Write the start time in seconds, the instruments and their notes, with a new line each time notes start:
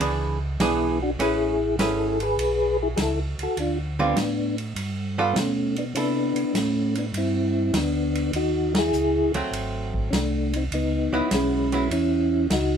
0.00 tonewheel organ C#2, hollow-body jazz guitar E3 B3 D4 G#4, ride
0.59 tonewheel organ B1 B3 E4, hollow-body jazz guitar E3 B3 D4 G#4, snare, hi-hat pedal, ride
1.02 tonewheel organ D4 F#4
1.19 tonewheel organ A1 E4 G#4, hollow-body jazz guitar A3 C#4 G#4 B4, ride
1.78 tonewheel organ G#1 A4, hollow-body jazz guitar A3 C#4 G#4 B4, snare, hi-hat pedal, ride
1.82 tonewheel organ E4
2.20 tonewheel organ G#4 B4, ride
2.37 tonewheel organ B1, ride
2.83 tonewheel organ E4 G#4
2.96 tonewheel organ C#2 G#4, snare, hi-hat pedal, ride
3.02 tonewheel organ E4 A4
3.38 tonewheel organ C#2, ride
3.43 tonewheel organ F#4 A4
3.57 tonewheel organ D2 D4 F4, ride
3.99 hollow-body jazz guitar D3 G3 C4 F4, tonewheel organ B3 D4
4.16 tonewheel organ A2, snare, hi-hat pedal, ride
4.58 ride
4.75 tonewheel organ G2, ride
5.18 hollow-body jazz guitar G3 B3 F4 A4
5.33 tonewheel organ B2 C4, snare, hi-hat pedal, ride
5.39 tonewheel organ A3 C#4
5.76 tonewheel organ B3 D4, ride
5.95 tonewheel organ C3 B3 C#4 D4, hollow-body jazz guitar E4 A4, ride
6.35 tonewheel organ C3, ride
6.54 tonewheel organ A2 A3 C#4, snare, hi-hat pedal, ride
6.95 tonewheel organ B3 D4, ride
7.13 tonewheel organ G2, ride
7.17 tonewheel organ C4 E4
7.73 tonewheel organ D2, snare, hi-hat pedal, ride
7.77 tonewheel organ B3 D4
8.15 ride
8.33 tonewheel organ D#2 D#4 F#4, ride
8.75 tonewheel organ E4 G#4, snare, ride
8.92 tonewheel organ C#2, hi-hat pedal
9.33 tonewheel organ C#2, hollow-body jazz guitar F#3 A3 C4, ride
9.51 tonewheel organ G#1, ride
9.94 kick
10.10 tonewheel organ C2 C#4, snare, hi-hat pedal, ride
10.16 tonewheel organ A3 D4
10.53 tonewheel organ C4 D#4, ride
10.71 tonewheel organ C#2 B3 D#4, ride
11.12 tonewheel organ C#2, hollow-body jazz guitar F#3 B3 E4
11.31 tonewheel organ B1 G#3 C#4, snare, hi-hat pedal, ride
11.72 hollow-body jazz guitar F#3 B3 E4, ride
11.90 tonewheel organ E2 C#4 E4, ride
12.50 tonewheel organ C#2 D#4 F#4, snare, hi-hat pedal, ride